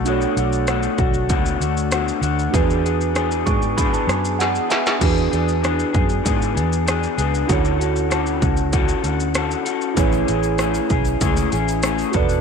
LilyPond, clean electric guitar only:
\new Staff \with { instrumentName = "Clean electric guitar" } { \time 4/4 \key e \mixolydian \tempo 4 = 97 <b, a d' fis'>8 <a d' fis'>8 <b, a d' fis'>8 <a d' fis'>8 <b, a d' fis'>8 <a d' fis'>8 <b, a d' fis'>8 <a d' fis'>8 | <e b d' gis'>8 <b d' gis'>8 <e b d' gis'>8 <b d' gis'>8 <e b d' gis'>8 <b d' gis'>8 <e b d' gis'>8 <b d' gis'>8 | <e b d' gis'>8 <b d' gis'>8 <e b d' gis'>8 <b d' gis'>8 <e b d' gis'>8 <b d' gis'>8 <e b d' gis'>8 <b d' gis'>8 | <d cis' fis' a'>8 <cis' fis' a'>8 <d cis' fis' a'>8 <cis' fis' a'>8 <cis' fis' a'>8 <cis' fis' a'>8 <d cis' fis' a'>8 <cis' fis' a'>8 |
<a cis' e' gis'>8 <cis' e' gis'>8 <a cis' e' gis'>8 <cis' e' gis'>8 <a cis' e' gis'>8 <cis' e' gis'>8 <a cis' e' gis'>8 <b d' a'>8 | }